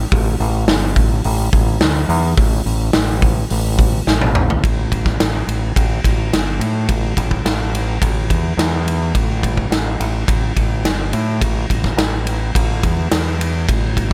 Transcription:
0.12 fingered electric bass A1, kick, open hi-hat
0.40 fingered electric bass A1, open hi-hat
0.67 fingered electric bass G1, snare, open hi-hat
0.96 fingered electric bass A1, kick, open hi-hat
1.24 fingered electric bass A1, open hi-hat
1.53 fingered electric bass A1, kick, open hi-hat
1.80 fingered electric bass D2, snare, open hi-hat
2.09 fingered electric bass E2, open hi-hat
2.37 fingered electric bass A1, kick, open hi-hat
2.65 fingered electric bass A1, open hi-hat
2.93 fingered electric bass A1, snare, open hi-hat
3.22 kick, open hi-hat
3.50 fingered electric bass A1, open hi-hat
3.79 kick, open hi-hat
4.07 fingered electric bass A1, snare
4.21 high tom
4.35 mid tom
4.50 floor tom
4.64 fingered electric bass A1, kick, ride
4.92 kick, ride
5.06 kick, snare
5.20 fingered electric bass A1, snare, ride
5.47 fingered electric bass A1, ride
5.76 fingered electric bass A1, kick, ride
6.04 fingered electric bass A1, kick, ride
6.32 fingered electric bass G1, snare, ride
6.59 fingered electric bass A2, ride
6.89 fingered electric bass A1, kick, ride
7.17 fingered electric bass A1, kick, ride
7.31 kick
7.45 fingered electric bass A1, snare, ride
7.75 ride
8.02 fingered electric bass A1, kick, ride
8.30 fingered electric bass E2, kick, ride
8.57 fingered electric bass E2, snare, ride
8.88 ride
9.15 fingered electric bass A1, kick, ride
9.43 kick, ride
9.57 kick
9.70 fingered electric bass A1, snare, ride
10.00 fingered electric bass A1, ride
10.28 fingered electric bass A1, kick, ride
10.56 fingered electric bass A1, kick, ride
10.84 fingered electric bass G1, snare, ride
11.13 fingered electric bass A2, ride
11.41 fingered electric bass A1, kick, ride
11.70 fingered electric bass A1, kick, ride
11.84 kick, snare
11.97 fingered electric bass A1, snare, ride
12.27 ride
12.55 fingered electric bass A1, kick, ride
12.83 fingered electric bass E2, kick, ride
13.11 fingered electric bass E2, snare, ride
13.41 ride
13.69 fingered electric bass A1, kick, ride
13.97 kick, ride

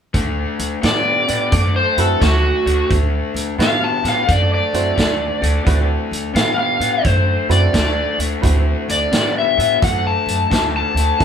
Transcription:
0.14 upright bass D2, overdriven electric guitar D3 A3, kick, closed hi-hat
0.59 upright bass D2, closed hi-hat
0.81 upright bass A2, overdriven electric guitar D3 B3, snare, closed hi-hat
0.86 electric slide guitar D5
1.28 upright bass A2, overdriven electric guitar D3 B3, closed hi-hat
1.51 upright bass F#2, overdriven electric guitar D3 A3, kick, closed hi-hat
1.76 electric slide guitar C5
1.97 upright bass F#2, upright piano C4 E4 F#4 B4, electric slide guitar A4, closed hi-hat
2.20 upright bass D2, overdriven electric guitar D3 A3, electric slide guitar F#4, kick, snare, closed hi-hat
2.66 upright bass D2, overdriven electric guitar D3 A3, closed hi-hat
2.89 upright bass D2, overdriven electric guitar D3 A3, kick, closed hi-hat
3.34 upright bass D2, closed hi-hat
3.58 upright bass A2, overdriven electric guitar D3 B3, upright piano B3 E4 F#4 B4, electric slide guitar F5, snare, closed hi-hat
3.84 electric slide guitar A5
4.03 upright bass A2, overdriven electric guitar D3 B3, snare, closed hi-hat
4.09 electric slide guitar F5
4.26 upright bass F#2, overdriven electric guitar D3 A3, kick, closed hi-hat
4.32 electric slide guitar D5
4.54 electric slide guitar D5
4.74 upright bass F#2, upright piano C4 E4 F#4 C5, closed hi-hat
4.96 upright bass D2, overdriven electric guitar D3 A3, kick, snare, closed hi-hat
5.41 upright bass D2, overdriven electric guitar D3 A3, closed hi-hat
5.65 upright bass D2, overdriven electric guitar D3 A3, upright piano C4 E4 F#4 B4, kick, closed hi-hat
6.11 upright bass D2, closed hi-hat
6.33 upright bass A2, overdriven electric guitar D3 B3, electric slide guitar F5, snare, closed hi-hat
6.59 electric slide guitar F5
6.80 upright bass A2, overdriven electric guitar D3 B3, closed hi-hat
7.03 upright bass F#2, overdriven electric guitar D3 A3, electric slide guitar C5, kick, closed hi-hat
7.49 upright bass F#2, upright piano C4 E4 F#4 B4, electric slide guitar D5, closed hi-hat
7.73 upright bass D2, overdriven electric guitar D3 A3, kick, snare, closed hi-hat
8.19 upright bass D2, overdriven electric guitar D3 A3, closed hi-hat
8.41 upright bass D2, overdriven electric guitar D3 A3, upright piano C4 E4 F#4 B4, kick, closed hi-hat
8.89 upright bass D2, electric slide guitar D5, closed hi-hat
9.12 upright bass A2, overdriven electric guitar D3 B3, snare, closed hi-hat
9.38 electric slide guitar E5
9.57 upright bass A2, overdriven electric guitar D3 B3, closed hi-hat
9.81 upright bass F#2, overdriven electric guitar D3 A3, electric slide guitar F#5, kick, closed hi-hat
10.07 electric slide guitar A5
10.26 upright bass F#2, closed hi-hat
10.50 upright bass D2, overdriven electric guitar D3 A3, kick, snare, closed hi-hat
10.77 electric slide guitar A5
10.94 upright bass D2, overdriven electric guitar D3 A3, closed hi-hat
11.19 upright bass G1, overdriven electric guitar G2 D3, upright piano B3 E4 F4 A4, kick, closed hi-hat

